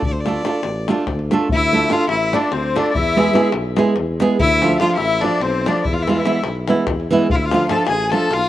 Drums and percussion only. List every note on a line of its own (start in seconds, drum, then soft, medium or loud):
0.02 davul low medium
0.26 davul high medium
0.35 davul high soft
0.45 davul high medium
0.54 davul high soft
0.63 davul high medium
0.76 davul high soft
0.88 davul high medium
0.97 davul high soft
1.07 davul high medium
1.07 davul low medium
1.19 davul high soft
1.31 davul high medium
1.41 davul high soft
1.49 davul low medium
1.90 davul high medium
1.99 davul high soft
2.09 davul high medium
2.33 davul high medium
2.52 davul high medium
2.76 davul high medium
2.95 davul low medium
3.18 davul high medium
3.35 davul high medium
3.44 davul high soft
3.52 davul high medium
3.77 davul high medium
3.96 davul high medium
4.20 davul high medium
4.39 davul low medium
4.62 davul high medium
4.80 davul high medium
4.89 davul high soft
4.97 davul high medium
5.22 davul high medium
5.41 davul high medium
5.66 davul high medium
5.85 davul low medium
6.08 davul high medium
6.26 davul high medium
6.35 davul high soft
6.44 davul high medium
6.55 davul high soft
6.68 davul high medium
6.87 davul high medium
6.87 davul low medium
7.00 davul high soft
7.22 davul high soft
7.30 davul low medium
7.51 davul high medium
7.69 davul high medium
7.87 davul high medium
8.12 davul high medium
8.31 davul high medium